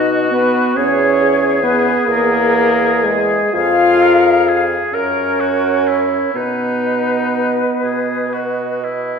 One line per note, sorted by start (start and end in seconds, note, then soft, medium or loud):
0.00 0.61 B2 medium
0.00 0.31 D#4 loud
0.00 0.74 F#4 medium
0.00 0.78 F#4 medium
0.00 0.35 D#5 medium
0.31 0.78 B3 medium
0.31 0.76 B4 medium
0.76 1.91 E2 medium
0.76 1.63 C#4 loud
0.76 3.54 G#4 medium
0.76 1.20 G#4 medium
0.76 1.65 C#5 medium
1.23 2.52 G#4 medium
1.63 2.08 B3 loud
1.63 2.06 B4 medium
2.07 3.37 E2 medium
2.07 3.05 A#3 loud
2.07 3.07 A#4 medium
2.55 3.53 G#4 medium
3.04 3.53 G#3 loud
3.04 3.55 G#4 medium
3.53 4.77 F2 medium
3.53 4.63 F4 loud
3.53 4.04 G#4 medium
3.53 4.63 F5 loud
4.02 4.92 G#4 medium
4.02 4.50 A#4 medium
4.48 4.96 G#4 medium
4.94 6.18 F#2 medium
4.94 6.31 C#4 loud
4.94 5.42 A#4 medium
4.94 5.39 A#4 medium
4.94 6.31 C#5 medium
5.40 5.89 F#4 medium
5.40 6.33 A#4 soft
5.87 6.38 E4 medium
6.35 7.66 B2 medium
6.35 8.80 B3 medium
6.35 7.66 D#4 soft
6.35 8.81 B4 medium
6.84 8.31 D#5 soft
7.83 9.17 B2 soft
7.83 8.35 G#4 soft
8.33 8.86 F#4 soft
8.33 9.19 D#5 soft
8.84 9.19 E4 soft